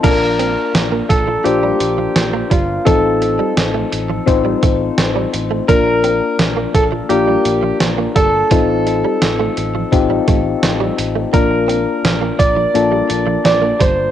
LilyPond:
<<
  \new Staff \with { instrumentName = "Grand piano" } { \time 4/4 \key bes \major \tempo 4 = 85 bes'4 r8 a'8 g'4. f'8 | a'2.~ a'8 r8 | bes'4 r8 a'8 g'4 r8 a'8~ | a'2.~ a'8 r8 |
bes'4. d''4. d''8 c''8 | }
  \new Staff \with { instrumentName = "Synth keys" } { \time 4/4 \key bes \major <bes d' f' a' bes'>2 <bes d' f' c''>2 | <c' ees' f' a'>2 <c' ees' f' c''>2 | <bes d' f' bes'>2 <bes d' f' bes'>2 | <c' ees' f' a'>2 <c' ees' f' g'>2 |
<bes d' f' bes'>2 <bes d' f' a'>2 | }
  \new Staff \with { instrumentName = "Clean electric guitar" } { \clef bass \time 4/4 \key bes \major bes16 r16 c'16 r8 bes16 r16 f16 r16 g16 r16 f16 r16 bes16 g16 r16 | f16 r8 g16 r16 a16 r16 f16 r16 g16 a16 r8 g16 r16 a16 | bes16 r16 c'16 r8 bes16 r16 f16 r16 g16 r16 f16 r16 bes16 g16 r16 | f16 r8 g16 r16 a16 r16 f16 r16 g16 a16 r8 g16 r16 a16 |
bes16 r16 c'16 r8 bes16 r16 f16 r16 g16 r16 f16 r16 bes16 g16 r16 | }
  \new Staff \with { instrumentName = "Fretless electric bass" } { \clef bass \time 4/4 \key bes \major bes,,4 bes,,8 bes,,8 bes,,8 bes,,8 bes,,8 g,,8 | a,,4 a,,8 a,,8 a,,8 a,,8 a,,8 a,,8 | bes,,4 bes,,8 bes,,8 bes,,8 bes,,8 bes,,8 g,,8 | a,,4 a,,8 a,,8 a,,8 a,,8 a,,8 a,,8 |
bes,,4 bes,,8 bes,,8 bes,,8 bes,,8 bes,,8 g,,8 | }
  \new DrumStaff \with { instrumentName = "Drums" } \drummode { \time 4/4 <cymc hh bd>8 hh8 <hh sn>8 <hh bd>8 hh8 hh8 <hh sn>8 <hh bd>8 | <hh bd>8 hh8 <hh sn>8 hh8 <hh bd>8 <hh bd>8 <hh sn>8 hh8 | <hh bd>8 hh8 <hh sn>8 <hh bd>8 hh8 hh8 <hh sn>8 <hh bd>8 | <hh bd>8 hh8 <hh sn>8 hh8 <hh bd>8 <hh bd>8 <hh sn>8 hh8 |
<hh bd>8 hh8 <hh sn>8 <hh bd>8 hh8 hh8 <hh sn>8 <hh bd>8 | }
>>